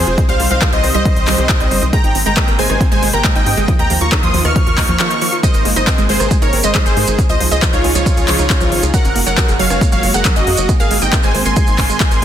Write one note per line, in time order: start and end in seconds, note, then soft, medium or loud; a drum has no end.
0.00 0.16 F3 medium
0.00 0.16 G#3 medium
0.00 1.90 C4 medium
0.00 0.20 G#4 medium
0.00 0.20 C5 loud
0.07 0.16 F1 medium
0.07 0.11 F4 medium
0.07 closed hi-hat soft
0.18 1.91 D#3 medium
0.18 1.91 G3 medium
0.18 0.25 D#4 medium
0.18 kick loud
0.18 closed hi-hat medium
0.29 0.38 C2 medium
0.29 0.36 G3 loud
0.29 0.47 C5 medium
0.29 0.46 F5 medium
0.29 0.47 F5 medium
0.29 closed hi-hat medium
0.40 0.49 C2 loud
0.40 0.47 G3 loud
0.40 open hi-hat loud
0.51 0.60 C2 medium
0.51 0.68 C5 medium
0.51 0.61 D#5 medium
0.51 0.68 F5 medium
0.51 closed hi-hat medium
0.62 0.69 G3 loud
0.62 kick loud
0.62 cross-stick medium
0.62 clap loud
0.62 closed hi-hat medium
0.73 0.82 C2 medium
0.73 0.77 G4 medium
0.73 0.90 C5 medium
0.73 0.90 D#5 medium
0.73 closed hi-hat medium
0.84 0.93 C2 loud
0.84 0.91 D#4 medium
0.84 open hi-hat medium
0.94 1.04 C2 loud
0.94 1.02 G3 loud
0.94 1.84 C5 medium
0.94 1.84 D#5 medium
0.94 1.84 D#5 loud
0.94 closed hi-hat medium
1.05 1.13 G3 loud
1.05 kick loud
1.05 closed hi-hat medium
1.16 1.26 C2 medium
1.16 1.27 D#5 medium
1.16 closed hi-hat medium
1.27 1.37 C2 loud
1.27 1.35 G3 loud
1.27 clap medium
1.27 open hi-hat loud
1.38 1.47 C2 medium
1.38 1.43 G4 medium
1.38 closed hi-hat medium
1.49 1.57 D#4 medium
1.49 kick loud
1.49 clap loud
1.49 closed hi-hat medium
1.60 1.69 C2 medium
1.60 1.68 G3 loud
1.60 closed hi-hat medium
1.71 1.80 G1 loud
1.71 1.79 G3 loud
1.71 open hi-hat medium
1.82 1.91 C2 medium
1.82 1.92 D#5 medium
1.82 closed hi-hat medium
1.93 3.67 C3 medium
1.93 3.66 G#3 medium
1.93 2.00 G#3 loud
1.93 7.15 A#3 medium
1.93 2.20 G5 medium
1.93 2.20 A#5 loud
1.93 kick loud
1.93 closed hi-hat medium
2.04 2.13 G#1 medium
2.04 2.08 D#4 medium
2.04 closed hi-hat medium
2.15 2.24 G#1 loud
2.15 2.22 C4 medium
2.15 open hi-hat loud
2.26 2.35 G#1 medium
2.26 2.33 G#3 loud
2.26 2.52 G5 medium
2.26 2.52 A#5 medium
2.26 2.52 A#5 loud
2.26 closed hi-hat medium
2.37 2.44 G#3 loud
2.37 kick loud
2.37 cross-stick medium
2.37 clap loud
2.37 closed hi-hat medium
2.48 2.57 G#1 medium
2.48 2.58 A#4 medium
2.48 closed hi-hat medium
2.59 2.68 G#1 loud
2.59 2.66 G#3 loud
2.59 2.85 C5 medium
2.59 2.85 G#5 loud
2.59 open hi-hat medium
2.70 2.79 G#1 medium
2.70 2.74 D#4 medium
2.70 cross-stick medium
2.70 closed hi-hat medium
2.81 2.88 C4 medium
2.81 kick loud
2.81 closed hi-hat medium
2.92 3.01 G#1 medium
2.92 2.99 G#3 loud
2.92 3.09 C5 medium
2.92 3.09 G#5 medium
2.92 closed hi-hat medium
3.03 3.12 G#1 loud
3.03 3.10 G#3 loud
3.03 open hi-hat loud
3.13 3.23 G#1 medium
3.13 3.24 A#4 medium
3.13 3.31 G5 medium
3.13 3.31 A#5 medium
3.13 closed hi-hat medium
3.24 3.32 G#3 loud
3.24 kick loud
3.24 clap loud
3.24 closed hi-hat medium
3.35 3.45 G#1 medium
3.35 3.40 D#4 medium
3.35 3.71 D#5 medium
3.35 3.71 G5 loud
3.35 closed hi-hat medium
3.46 3.55 G#2 loud
3.46 3.54 C4 medium
3.46 open hi-hat medium
3.57 3.66 G#1 medium
3.57 3.65 G#3 loud
3.57 closed hi-hat medium
3.68 5.42 D#3 medium
3.68 5.42 F3 medium
3.68 3.76 F3 loud
3.68 kick loud
3.68 closed hi-hat medium
3.79 3.88 D#2 medium
3.79 3.90 D#5 medium
3.79 3.97 G5 medium
3.79 3.97 A#5 medium
3.79 closed hi-hat medium
3.90 3.99 D#2 loud
3.90 3.98 F3 loud
3.90 open hi-hat loud
4.01 4.10 D#2 medium
4.01 4.06 F4 medium
4.01 4.19 A#5 medium
4.01 4.19 C#6 medium
4.12 4.19 D#4 medium
4.12 kick loud
4.12 cross-stick medium
4.12 clap loud
4.12 closed hi-hat medium
4.23 4.32 D#2 medium
4.23 4.30 F3 loud
4.23 4.41 C6 medium
4.23 4.41 D#6 medium
4.23 closed hi-hat medium
4.34 4.43 D#2 loud
4.34 4.41 F3 loud
4.34 open hi-hat medium
4.45 4.54 D#2 medium
4.45 4.55 D#5 medium
4.45 5.35 C#6 medium
4.45 5.35 F6 loud
4.45 cross-stick medium
4.45 closed hi-hat medium
4.56 4.63 F3 loud
4.56 kick loud
4.56 closed hi-hat medium
4.67 4.76 D#2 medium
4.67 4.71 F4 medium
4.67 closed hi-hat medium
4.78 4.87 D#2 loud
4.78 4.85 D#4 medium
4.78 kick medium
4.78 clap medium
4.78 open hi-hat loud
4.89 4.98 D#2 medium
4.89 4.96 F3 loud
4.89 closed hi-hat medium
5.00 5.07 F3 loud
5.00 clap loud
5.00 closed hi-hat medium
5.11 5.21 D#5 medium
5.11 closed hi-hat medium
5.21 5.29 F3 loud
5.21 open hi-hat medium
5.32 5.37 F4 medium
5.32 closed hi-hat medium
5.43 7.17 C3 medium
5.43 5.51 G#3 loud
5.43 7.17 G#3 medium
5.43 5.70 C5 medium
5.43 5.70 D#5 loud
5.43 kick loud
5.43 closed hi-hat medium
5.43 maracas medium
5.54 5.63 G#1 medium
5.54 5.65 A#4 medium
5.54 closed hi-hat medium
5.54 maracas soft
5.65 5.74 G#1 loud
5.65 5.73 G#3 loud
5.65 open hi-hat loud
5.76 5.85 G#1 medium
5.76 5.81 D#4 medium
5.76 6.03 C5 medium
5.76 6.03 D#5 loud
5.76 6.03 D#5 medium
5.76 closed hi-hat medium
5.76 maracas medium
5.87 5.95 C4 medium
5.87 kick loud
5.87 cross-stick medium
5.87 clap loud
5.87 closed hi-hat medium
5.87 maracas medium
5.98 6.07 G#1 medium
5.98 6.06 G#3 loud
5.98 closed hi-hat medium
5.98 maracas soft
6.09 6.18 G#1 loud
6.09 6.17 G#3 loud
6.09 6.36 G#4 medium
6.09 6.36 C5 loud
6.09 6.36 C5 medium
6.09 open hi-hat medium
6.20 6.29 G#1 medium
6.20 6.30 A#4 medium
6.20 cross-stick medium
6.20 closed hi-hat medium
6.20 maracas medium
6.31 6.38 G#3 loud
6.31 kick loud
6.31 closed hi-hat medium
6.31 maracas medium
6.42 6.51 G#1 medium
6.42 6.46 D#4 medium
6.42 6.60 A#4 medium
6.42 6.60 C#5 medium
6.42 closed hi-hat medium
6.42 maracas soft
6.53 6.62 G#1 loud
6.53 6.60 C4 medium
6.53 open hi-hat loud
6.63 6.73 G#1 medium
6.63 6.71 G#3 loud
6.63 6.82 C5 medium
6.63 6.82 D#5 medium
6.63 6.82 D#5 loud
6.63 closed hi-hat medium
6.63 maracas medium
6.75 6.82 G#3 loud
6.75 kick loud
6.75 clap loud
6.75 closed hi-hat medium
6.75 maracas medium
6.86 6.95 G#1 medium
6.86 7.21 G#4 medium
6.86 6.96 A#4 medium
6.86 7.21 C5 loud
6.86 7.21 C5 medium
6.86 closed hi-hat medium
6.86 maracas soft
6.97 7.06 G#2 loud
6.97 7.04 G#3 loud
6.97 open hi-hat medium
7.07 7.17 G#1 medium
7.07 7.12 D#4 medium
7.07 closed hi-hat medium
7.07 maracas medium
7.19 8.92 C#3 medium
7.19 8.92 C#4 medium
7.19 7.26 C#4 medium
7.19 8.92 D#4 medium
7.19 8.92 F4 medium
7.19 8.92 G#4 medium
7.19 kick loud
7.19 closed hi-hat medium
7.19 maracas medium
7.29 7.39 C#2 medium
7.29 7.37 F3 loud
7.29 7.47 C5 medium
7.29 7.47 D#5 medium
7.29 closed hi-hat medium
7.29 maracas soft
7.40 7.50 C#2 loud
7.40 7.48 F3 loud
7.40 open hi-hat loud
7.51 7.61 C#2 medium
7.51 7.62 G#4 medium
7.51 7.69 C5 medium
7.51 7.69 D#5 medium
7.51 closed hi-hat medium
7.51 maracas medium
7.62 7.70 F3 loud
7.62 kick loud
7.62 cross-stick medium
7.62 clap loud
7.62 closed hi-hat medium
7.62 maracas medium
7.73 7.83 C#2 medium
7.73 7.78 D#4 medium
7.73 7.91 F4 medium
7.73 7.91 C#5 medium
7.73 closed hi-hat medium
7.73 maracas soft
7.84 7.93 C#2 loud
7.84 7.92 C#4 medium
7.84 open hi-hat medium
7.95 8.04 C#2 medium
7.95 8.03 F3 loud
7.95 8.85 F4 medium
7.95 8.85 C#5 medium
7.95 8.85 C#5 loud
7.95 closed hi-hat medium
7.95 maracas medium
8.06 8.14 F3 loud
8.06 kick loud
8.06 closed hi-hat medium
8.06 maracas medium
8.17 8.26 C#2 medium
8.17 8.28 G#4 medium
8.17 closed hi-hat medium
8.17 maracas soft
8.28 8.37 C#2 loud
8.28 8.36 F3 loud
8.28 clap medium
8.28 open hi-hat loud
8.39 8.48 C#2 medium
8.39 8.43 D#4 medium
8.39 closed hi-hat medium
8.39 maracas medium
8.50 8.57 C#4 medium
8.50 kick loud
8.50 clap loud
8.50 closed hi-hat medium
8.50 maracas medium
8.61 8.70 C#2 medium
8.61 8.68 F3 loud
8.61 closed hi-hat medium
8.61 maracas soft
8.72 8.81 G#1 loud
8.72 8.79 F3 loud
8.72 open hi-hat medium
8.83 8.92 C#2 medium
8.83 8.93 G#4 medium
8.83 closed hi-hat medium
8.83 maracas medium
8.94 9.01 F#3 loud
8.94 10.67 G#3 medium
8.94 12.25 A#3 medium
8.94 10.67 F#4 medium
8.94 9.20 A#4 medium
8.94 9.20 F#5 loud
8.94 kick loud
8.94 closed hi-hat medium
8.94 maracas medium
9.05 9.14 F#1 medium
9.05 9.09 C#4 medium
9.05 closed hi-hat medium
9.05 maracas soft
9.16 9.25 F#1 loud
9.16 9.23 A#3 medium
9.16 open hi-hat loud
9.27 9.36 F#1 medium
9.27 9.34 F#3 loud
9.27 9.53 A#4 medium
9.27 9.53 F#5 medium
9.27 9.53 F#5 loud
9.27 closed hi-hat medium
9.27 maracas medium
9.38 9.45 F#3 loud
9.38 kick loud
9.38 cross-stick medium
9.38 clap loud
9.38 closed hi-hat medium
9.38 maracas medium
9.48 9.58 F#1 medium
9.48 9.59 G#4 medium
9.48 closed hi-hat medium
9.48 maracas soft
9.59 9.69 F#1 loud
9.59 9.67 F#3 loud
9.59 9.86 C#5 medium
9.59 9.86 F5 loud
9.59 open hi-hat loud
9.70 9.80 F#1 medium
9.70 9.75 C#4 medium
9.70 cross-stick medium
9.70 maracas medium
9.81 9.89 A#3 medium
9.81 kick loud
9.81 closed hi-hat medium
9.81 maracas medium
9.92 10.01 F#1 medium
9.92 10.00 F#3 loud
9.92 10.10 C#5 medium
9.92 10.10 F5 medium
9.92 closed hi-hat medium
9.92 maracas soft
10.03 10.12 F#1 loud
10.03 10.11 F#3 loud
10.03 open hi-hat loud
10.14 10.23 F#1 medium
10.14 10.25 G#4 medium
10.14 10.32 A#4 medium
10.14 10.32 F#5 loud
10.14 10.32 F#5 medium
10.14 maracas medium
10.25 10.33 F#3 loud
10.25 kick loud
10.25 clap loud
10.25 closed hi-hat medium
10.25 maracas medium
10.36 10.45 F#1 medium
10.36 10.41 C#4 medium
10.36 10.72 F#4 medium
10.36 10.72 D#5 loud
10.36 10.72 D#5 medium
10.36 closed hi-hat medium
10.36 maracas soft
10.47 10.56 F#2 loud
10.47 10.54 A#3 medium
10.47 open hi-hat medium
10.57 10.67 F#1 medium
10.57 10.65 F#3 loud
10.57 closed hi-hat medium
10.57 maracas medium
10.69 12.25 G#3 medium
10.69 10.76 G#3 loud
10.69 12.25 C4 medium
10.69 kick loud
10.69 closed hi-hat medium
10.69 maracas medium
10.80 10.89 G#1 medium
10.80 10.98 G#4 medium
10.80 10.90 A#4 medium
10.80 10.98 F5 medium
10.80 closed hi-hat soft
10.80 maracas soft
10.91 11.00 G#1 loud
10.91 10.98 G#3 loud
10.91 open hi-hat loud
11.02 11.11 G#1 medium
11.02 11.06 D#4 medium
11.02 11.19 D#5 medium
11.02 11.20 G5 medium
11.02 closed hi-hat medium
11.02 maracas medium
11.12 11.20 C4 medium
11.12 kick loud
11.12 cross-stick medium
11.12 clap loud
11.12 closed hi-hat medium
11.12 maracas medium
11.23 11.33 G#1 medium
11.23 11.31 G#3 loud
11.23 11.41 C5 medium
11.23 11.41 G#5 medium
11.23 closed hi-hat medium
11.23 maracas soft
11.35 11.44 G#1 loud
11.35 11.42 G#3 loud
11.35 open hi-hat loud
11.45 11.55 G#1 medium
11.45 11.56 A#4 medium
11.45 12.25 G#5 medium
11.45 12.25 C6 loud
11.45 12.25 C6 medium
11.45 closed hi-hat medium
11.45 maracas medium
11.56 11.64 G#3 loud
11.56 kick loud
11.56 closed hi-hat medium
11.56 maracas medium
11.67 11.77 G#1 medium
11.67 11.72 D#4 medium
11.67 closed hi-hat medium
11.67 maracas soft
11.78 11.88 G#1 loud
11.78 11.86 C4 medium
11.78 kick medium
11.78 clap medium
11.78 open hi-hat loud
11.89 11.98 G#1 medium
11.89 11.97 G#3 loud
11.89 closed hi-hat soft
11.89 maracas medium
12.00 12.08 G#3 loud
12.00 kick loud
12.00 clap loud
12.00 closed hi-hat medium
12.00 maracas medium
12.11 12.20 G#1 medium
12.11 12.22 A#4 medium
12.11 closed hi-hat soft
12.11 maracas soft